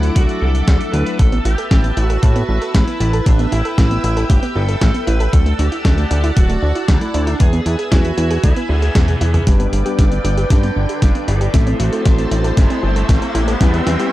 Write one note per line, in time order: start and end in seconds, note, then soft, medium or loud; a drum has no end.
0.00 0.11 D2 medium
0.00 0.91 F#3 medium
0.00 0.91 A3 medium
0.00 0.91 D4 medium
0.00 0.12 E4 medium
0.00 0.91 E4 medium
0.00 1.15 A4 medium
0.00 1.15 E5 medium
0.00 1.15 F#5 medium
0.00 1.15 D6 medium
0.00 closed hi-hat soft
0.16 0.26 C2 medium
0.16 0.43 F#4 medium
0.16 kick loud
0.16 closed hi-hat medium
0.29 closed hi-hat soft
0.42 0.62 C2 medium
0.42 0.93 A4 loud
0.55 closed hi-hat soft
0.68 0.78 D2 loud
0.68 kick loud
0.68 snare loud
0.68 closed hi-hat medium
0.81 closed hi-hat soft
0.93 1.04 D2 medium
0.93 1.16 F#3 medium
0.93 1.16 A3 medium
0.93 1.16 D4 medium
0.93 1.16 E4 medium
0.93 1.19 B4 medium
0.93 closed hi-hat medium
1.06 closed hi-hat soft
1.19 1.40 A1 loud
1.19 1.30 A3 medium
1.19 1.43 A4 medium
1.19 5.29 B4 medium
1.19 5.29 E5 medium
1.19 3.24 A5 medium
1.19 7.36 E6 medium
1.19 kick loud
1.19 closed hi-hat medium
1.32 1.40 B3 loud
1.32 closed hi-hat soft
1.45 1.55 A1 loud
1.45 1.56 E4 medium
1.45 2.00 G4 loud
1.45 closed hi-hat medium
1.58 1.66 A4 medium
1.58 closed hi-hat soft
1.71 1.92 A1 medium
1.71 1.78 A3 loud
1.71 kick loud
1.71 snare loud
1.71 closed hi-hat medium
1.84 1.95 B3 medium
1.84 closed hi-hat soft
1.97 2.18 A1 loud
1.97 2.04 E4 loud
1.97 2.22 F#4 loud
1.97 closed hi-hat medium
2.10 2.17 A4 loud
2.10 closed hi-hat soft
2.23 2.43 A2 medium
2.23 2.34 A3 medium
2.23 2.71 F#4 medium
2.23 kick loud
2.23 closed hi-hat medium
2.36 2.43 B3 loud
2.36 closed hi-hat soft
2.49 2.59 A1 medium
2.49 2.60 E4 medium
2.62 2.69 A4 medium
2.62 closed hi-hat soft
2.74 2.85 A1 medium
2.74 2.82 A3 medium
2.74 3.28 E4 medium
2.74 kick loud
2.74 snare loud
2.74 closed hi-hat medium
2.87 2.99 B3 medium
2.87 closed hi-hat soft
3.00 3.21 A1 loud
3.00 3.08 E4 loud
3.00 closed hi-hat medium
3.13 3.21 A4 loud
3.13 closed hi-hat soft
3.26 3.47 A1 loud
3.26 3.37 A3 medium
3.26 3.50 D4 medium
3.26 5.31 G5 medium
3.26 kick loud
3.26 closed hi-hat medium
3.39 3.47 B3 loud
3.39 closed hi-hat soft
3.52 3.62 A1 loud
3.52 4.26 E4 medium
3.52 3.63 E4 medium
3.52 closed hi-hat medium
3.65 3.72 A4 medium
3.65 closed hi-hat soft
3.78 3.99 A1 medium
3.78 3.85 A3 loud
3.78 kick loud
3.78 snare loud
3.78 closed hi-hat medium
3.91 4.02 B3 medium
3.91 closed hi-hat soft
4.04 4.24 A1 medium
4.04 4.11 E4 medium
4.04 closed hi-hat medium
4.17 4.24 A4 loud
4.17 closed hi-hat soft
4.30 4.40 G1 medium
4.30 4.41 A3 medium
4.30 4.54 G4 medium
4.30 kick loud
4.30 closed hi-hat medium
4.43 4.50 B3 loud
4.43 closed hi-hat soft
4.56 4.76 G1 medium
4.56 4.67 E4 medium
4.56 5.07 A4 loud
4.69 4.76 A4 medium
4.69 closed hi-hat soft
4.81 4.92 A1 medium
4.81 4.89 A3 loud
4.81 kick loud
4.81 snare loud
4.81 closed hi-hat medium
4.94 5.05 B3 medium
4.94 closed hi-hat soft
5.07 5.28 A1 medium
5.07 5.15 E4 loud
5.07 5.31 B4 medium
5.07 closed hi-hat medium
5.20 5.28 A4 loud
5.20 closed hi-hat soft
5.33 5.54 D2 medium
5.33 5.44 F#3 medium
5.33 5.57 A4 loud
5.33 7.38 D5 medium
5.33 7.38 F#5 medium
5.33 7.38 A5 medium
5.33 kick loud
5.33 closed hi-hat medium
5.46 5.53 A3 loud
5.46 closed hi-hat soft
5.59 5.69 D2 loud
5.59 5.70 D4 medium
5.59 6.32 G4 loud
5.59 closed hi-hat medium
5.72 5.79 E4 medium
5.72 closed hi-hat soft
5.85 6.05 D2 medium
5.85 5.92 F#3 loud
5.85 kick loud
5.85 snare loud
5.85 closed hi-hat medium
5.98 6.09 A3 medium
5.98 closed hi-hat soft
6.11 6.31 D2 loud
6.11 6.18 D4 loud
6.11 closed hi-hat medium
6.24 6.31 E4 loud
6.24 closed hi-hat soft
6.37 6.57 D1 medium
6.37 6.48 F#3 medium
6.37 6.85 F#4 medium
6.37 kick loud
6.37 closed hi-hat medium
6.50 6.57 A3 loud
6.50 closed hi-hat soft
6.62 6.73 D2 medium
6.62 6.74 D4 medium
6.75 6.83 E4 medium
6.75 closed hi-hat soft
6.88 6.99 D2 medium
6.88 6.96 F#3 medium
6.88 7.40 E4 medium
6.88 kick loud
6.88 snare loud
6.88 closed hi-hat medium
7.01 7.12 A3 medium
7.01 closed hi-hat soft
7.14 7.35 D2 loud
7.14 7.22 D4 loud
7.14 closed hi-hat medium
7.27 7.35 E4 loud
7.27 closed hi-hat soft
7.40 7.61 E2 loud
7.40 7.51 G#3 medium
7.40 7.88 G#4 medium
7.40 9.45 B4 medium
7.40 9.45 E5 medium
7.40 9.45 G#5 medium
7.40 9.45 E6 medium
7.40 kick loud
7.40 closed hi-hat medium
7.53 7.60 B3 loud
7.53 closed hi-hat soft
7.66 7.76 E2 medium
7.66 7.77 E4 medium
7.66 closed hi-hat medium
7.79 7.86 G#4 medium
7.79 closed hi-hat soft
7.92 8.12 E2 medium
7.92 7.99 G#3 loud
7.92 8.40 F#4 medium
7.92 kick loud
7.92 snare loud
7.92 closed hi-hat medium
8.05 8.16 B3 medium
8.05 closed hi-hat soft
8.18 8.38 E2 medium
8.18 8.25 E4 loud
8.18 closed hi-hat medium
8.31 8.38 G#4 loud
8.31 closed hi-hat soft
8.43 8.54 D2 medium
8.43 8.55 G#3 medium
8.43 8.69 E4 medium
8.43 kick loud
8.43 closed hi-hat medium
8.56 8.64 B3 loud
8.56 closed hi-hat soft
8.69 8.90 D2 medium
8.69 8.80 E4 medium
8.69 9.43 E4 medium
8.69 9.43 G#4 loud
8.82 8.90 G#4 medium
8.82 closed hi-hat soft
8.95 9.16 E2 medium
8.95 9.03 G#3 loud
8.95 kick loud
8.95 snare loud
8.95 closed hi-hat medium
8.95 high tom medium
9.08 9.19 B3 medium
9.08 closed hi-hat soft
9.08 high tom medium
9.21 9.42 E2 medium
9.21 9.28 E4 loud
9.21 closed hi-hat medium
9.34 9.41 G#4 loud
9.34 closed hi-hat soft
9.34 mid tom medium
9.47 9.67 G1 loud
9.47 9.58 G3 medium
9.47 9.83 G3 medium
9.47 9.83 B3 medium
9.47 9.83 D4 medium
9.47 9.83 G4 medium
9.47 10.47 G4 medium
9.47 11.52 B4 medium
9.47 10.54 B4 loud
9.47 11.52 D5 medium
9.47 11.52 G5 medium
9.47 11.52 D6 medium
9.47 kick loud
9.47 snare soft
9.47 closed hi-hat medium
9.47 riser medium
9.60 9.67 B3 loud
9.60 closed hi-hat soft
9.73 9.83 G1 loud
9.73 9.84 D4 medium
9.73 closed hi-hat medium
9.86 10.03 G3 medium
9.86 10.03 B3 medium
9.86 10.03 D4 medium
9.86 9.93 G4 medium
9.86 10.03 G4 loud
9.86 closed hi-hat soft
9.99 10.19 G1 medium
9.99 10.06 G3 loud
9.99 kick loud
9.99 snare soft
9.99 closed hi-hat medium
10.12 10.23 B3 medium
10.12 closed hi-hat soft
10.25 10.45 G1 loud
10.25 10.32 D4 loud
10.25 closed hi-hat medium
10.37 10.45 G4 loud
10.37 closed hi-hat soft
10.50 10.71 G2 medium
10.50 10.62 G3 medium
10.50 10.99 D4 medium
10.50 11.02 A4 loud
10.50 kick loud
10.50 snare medium
10.50 closed hi-hat medium
10.63 10.71 B3 loud
10.63 closed hi-hat soft
10.76 10.87 G1 medium
10.76 10.87 D4 medium
10.89 10.97 G4 medium
10.89 closed hi-hat soft
11.02 11.12 G1 medium
11.02 11.10 G3 loud
11.02 11.27 D4 medium
11.02 11.28 G4 medium
11.02 kick loud
11.02 snare medium
11.02 closed hi-hat medium
11.15 11.26 B3 medium
11.15 closed hi-hat soft
11.28 11.49 G1 loud
11.28 11.35 D4 loud
11.28 11.76 E4 medium
11.28 11.80 A4 loud
11.28 closed hi-hat medium
11.41 11.48 G4 loud
11.41 closed hi-hat soft
11.54 11.74 A1 loud
11.54 11.90 A3 medium
11.54 11.65 A3 medium
11.54 11.90 C4 medium
11.54 11.90 E4 medium
11.54 11.90 A4 medium
11.54 13.59 C5 medium
11.54 14.12 E5 medium
11.54 13.59 A5 medium
11.54 14.12 E6 medium
11.54 kick loud
11.54 snare medium
11.54 closed hi-hat loud
11.67 11.74 C4 loud
11.67 closed hi-hat soft
11.80 11.90 A1 medium
11.80 12.54 D4 medium
11.80 11.91 E4 medium
11.80 12.53 F#4 loud
11.80 closed hi-hat medium
11.93 13.58 A3 medium
11.93 13.58 C4 medium
11.93 13.58 E4 medium
11.93 13.58 A4 loud
11.93 12.00 A4 medium
11.93 closed hi-hat soft
12.05 12.26 A1 medium
12.05 12.13 A3 loud
12.05 kick loud
12.05 snare medium
12.05 closed hi-hat medium
12.18 12.30 C4 medium
12.18 closed hi-hat soft
12.31 12.52 A1 medium
12.31 12.39 E4 medium
12.31 closed hi-hat medium
12.44 12.52 A4 loud
12.44 closed hi-hat soft
12.57 12.68 G1 medium
12.57 12.68 A3 medium
12.57 12.82 C4 medium
12.57 12.81 E4 medium
12.57 kick loud
12.57 snare medium
12.57 closed hi-hat loud
12.70 12.78 C4 loud
12.70 closed hi-hat soft
12.83 13.04 G1 medium
12.83 12.94 E4 medium
12.83 13.57 E4 medium
12.83 13.60 G4 loud
12.96 13.04 A4 medium
12.96 closed hi-hat soft
13.09 13.19 A1 medium
13.09 13.16 A3 loud
13.09 kick loud
13.09 snare medium
13.09 closed hi-hat medium
13.22 13.33 C4 medium
13.22 closed hi-hat soft
13.35 13.55 A1 medium
13.35 13.42 E4 loud
13.35 closed hi-hat medium
13.48 13.55 A4 medium
13.48 closed hi-hat soft
13.61 13.81 E2 loud
13.61 13.96 G3 medium
13.61 13.72 G3 medium
13.61 13.96 B3 medium
13.61 13.96 E4 medium
13.61 13.96 G4 loud
13.61 14.12 G4 medium
13.61 14.12 B4 medium
13.61 14.12 B4 loud
13.61 14.12 G5 medium
13.61 kick loud
13.61 snare medium
13.61 closed hi-hat medium
13.74 13.81 B3 loud
13.74 closed hi-hat soft
13.87 13.97 E2 loud
13.87 13.98 E4 medium
13.87 snare medium
13.87 closed hi-hat medium
13.99 14.12 G3 medium
13.99 14.12 B3 medium
13.99 14.12 E4 medium
13.99 14.12 G4 loud
13.99 14.07 G4 medium
13.99 closed hi-hat soft